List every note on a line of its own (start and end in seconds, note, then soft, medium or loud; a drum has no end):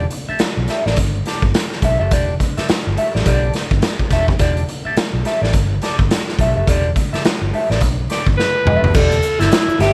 0.10 muted clean electric guitar stroke soft
0.10 closed hi-hat medium
0.29 0.40 G4 soft
0.29 0.40 A4 medium
0.29 0.41 E5 medium
0.29 muted fingered electric bass stroke soft
0.39 muted fingered electric bass stroke soft
0.39 muted clean electric guitar stroke soft
0.39 snare medium
0.39 closed hi-hat medium
0.57 0.66 B1 medium
0.57 muted clean electric guitar stroke soft
0.68 0.86 G4 medium
0.68 0.85 A4 medium
0.68 0.85 E5 medium
0.68 snare soft
0.68 closed hi-hat medium
0.86 0.98 A1 medium
0.86 0.97 G4 soft
0.86 0.97 A4 medium
0.86 0.97 D5 soft
0.86 snare soft
0.96 1.20 G1 medium
0.96 muted clean electric guitar stroke soft
0.96 kick medium
0.96 closed hi-hat medium
1.26 1.44 G4 medium
1.26 1.44 A4 soft
1.26 1.43 D5 medium
1.26 snare soft
1.26 closed hi-hat medium
1.42 1.52 G1 medium
1.42 muted clean electric guitar stroke soft
1.42 kick medium
1.54 muted clean electric guitar stroke soft
1.54 snare medium
1.54 closed hi-hat loud
1.72 muted clean electric guitar stroke soft
1.72 snare soft
1.82 1.97 B1 medium
1.82 2.00 G4 medium
1.82 1.99 A4 medium
1.82 1.98 E5 medium
1.82 kick medium
1.82 closed hi-hat medium
1.99 2.11 F#1 medium
1.99 2.10 G4 soft
1.99 2.11 A4 medium
1.99 2.12 E5 medium
2.11 2.35 E1 loud
2.11 2.33 G4 medium
2.11 2.33 A4 medium
2.11 2.34 D5 medium
2.11 kick loud
2.11 closed hi-hat loud
2.40 muted clean electric guitar stroke soft
2.40 kick medium
2.40 closed hi-hat medium
2.57 2.67 G4 soft
2.57 2.68 A4 medium
2.57 2.69 E5 medium
2.57 muted fingered electric bass stroke soft
2.57 snare soft
2.57 closed hi-hat medium
2.68 muted clean electric guitar stroke soft
2.68 muted fingered electric bass stroke soft
2.68 snare medium
2.68 closed hi-hat medium
2.86 2.96 G1 medium
2.86 muted clean electric guitar stroke soft
2.97 3.15 G4 medium
2.97 3.14 A4 medium
2.97 3.14 E5 medium
2.97 closed hi-hat medium
3.15 3.24 A1 medium
3.15 3.25 G4 soft
3.15 3.25 A4 soft
3.15 3.26 D5 medium
3.15 snare soft
3.26 3.49 B1 medium
3.26 3.52 G4 medium
3.26 3.52 A4 medium
3.26 3.53 D5 medium
3.26 kick medium
3.26 closed hi-hat medium
3.53 muted clean electric guitar stroke soft
3.53 snare soft
3.53 closed hi-hat medium
3.71 3.81 G1 medium
3.71 muted clean electric guitar stroke medium
3.71 kick medium
3.82 snare medium
3.82 closed hi-hat loud
3.99 muted clean electric guitar stroke soft
3.99 kick medium
4.10 4.28 E1 medium
4.10 4.33 G4 medium
4.10 4.28 A4 medium
4.10 4.28 E5 loud
4.10 kick medium
4.10 snare soft
4.10 closed hi-hat medium
4.28 4.38 F#1 medium
4.28 muted clean electric guitar stroke soft
4.28 kick medium
4.39 4.63 E1 loud
4.39 4.61 G4 medium
4.39 4.62 A4 medium
4.39 4.62 D5 medium
4.39 kick loud
4.39 closed hi-hat medium
4.57 closed hi-hat medium
4.69 muted clean electric guitar stroke soft
4.69 closed hi-hat medium
4.85 4.96 G4 soft
4.85 4.97 A4 medium
4.85 4.98 E5 medium
4.85 muted fingered electric bass stroke soft
4.97 muted fingered electric bass stroke soft
4.97 muted clean electric guitar stroke soft
4.97 snare loud
4.97 closed hi-hat medium
5.13 5.23 B1 medium
5.13 muted clean electric guitar stroke soft
5.25 5.43 G4 medium
5.25 5.42 A4 medium
5.25 5.42 E5 medium
5.25 snare soft
5.25 closed hi-hat medium
5.42 5.51 A1 medium
5.42 5.52 G4 soft
5.42 5.53 A4 soft
5.42 5.54 D5 medium
5.42 snare soft
5.53 5.78 G1 medium
5.53 muted clean electric guitar stroke soft
5.53 kick medium
5.53 closed hi-hat medium
5.81 6.00 G4 soft
5.81 5.99 A4 medium
5.81 5.98 D5 medium
5.81 snare soft
5.81 closed hi-hat medium
5.99 6.09 G1 medium
5.99 muted clean electric guitar stroke soft
5.99 kick medium
6.10 muted clean electric guitar stroke soft
6.10 snare medium
6.10 closed hi-hat loud
6.27 muted clean electric guitar stroke soft
6.27 snare soft
6.39 6.53 B1 medium
6.39 6.57 G4 medium
6.39 6.56 A4 medium
6.39 6.55 E5 medium
6.39 kick medium
6.39 closed hi-hat medium
6.56 6.66 F#1 medium
6.56 6.66 G4 soft
6.56 6.67 A4 medium
6.56 6.68 E5 medium
6.67 6.91 E1 medium
6.67 6.89 G4 medium
6.67 6.90 A4 medium
6.67 6.90 D5 medium
6.67 kick loud
6.67 closed hi-hat medium
6.96 muted clean electric guitar stroke soft
6.96 kick medium
6.96 closed hi-hat medium
7.13 7.23 G4 medium
7.13 7.24 A4 medium
7.13 7.25 E5 medium
7.13 muted fingered electric bass stroke soft
7.13 snare soft
7.13 closed hi-hat soft
7.24 muted clean electric guitar stroke soft
7.24 muted fingered electric bass stroke soft
7.24 snare loud
7.24 closed hi-hat loud
7.41 7.51 G1 medium
7.41 muted clean electric guitar stroke soft
7.53 7.71 G4 medium
7.53 7.70 A4 medium
7.53 7.70 E5 medium
7.53 open hi-hat soft
7.70 7.81 A1 medium
7.70 7.80 G4 soft
7.70 7.81 A4 medium
7.70 7.82 D5 medium
7.70 snare soft
7.80 8.05 B1 medium
7.80 kick medium
7.80 closed hi-hat medium
8.10 8.28 G4 medium
8.10 8.28 A4 medium
8.10 8.27 D5 medium
8.10 snare soft
8.10 closed hi-hat medium
8.27 8.36 G1 medium
8.27 muted clean electric guitar stroke soft
8.27 kick medium
8.38 8.97 B4 loud
8.38 snare soft
8.56 muted clean electric guitar stroke soft
8.65 8.80 E1 medium
8.65 8.88 G4 medium
8.65 8.84 A4 medium
8.65 8.83 E5 medium
8.65 mid tom medium
8.82 8.92 F#1 medium
8.82 muted clean electric guitar stroke soft
8.82 floor tom medium
8.94 9.19 E1 loud
8.94 9.16 G4 medium
8.94 9.17 A4 loud
8.94 9.41 A4 loud
8.94 9.17 D5 medium
8.94 kick loud
8.94 crash loud
8.94 shaker medium
9.11 closed hi-hat medium
9.11 shaker soft
9.22 muted clean electric guitar stroke soft
9.22 closed hi-hat medium
9.22 shaker medium
9.39 9.49 G1 medium
9.39 9.82 E4 loud
9.39 9.49 G4 medium
9.39 9.50 A4 medium
9.39 9.51 E5 medium
9.39 snare soft
9.39 closed hi-hat medium
9.39 shaker medium
9.52 snare loud
9.52 closed hi-hat loud
9.52 shaker medium
9.68 muted fingered electric bass stroke soft
9.68 muted clean electric guitar stroke medium
9.68 shaker medium
9.79 9.93 G1 loud
9.79 9.93 G4 medium
9.79 9.93 G4 loud
9.79 9.93 A4 medium
9.79 9.93 E5 medium
9.79 snare soft
9.79 closed hi-hat medium
9.79 shaker soft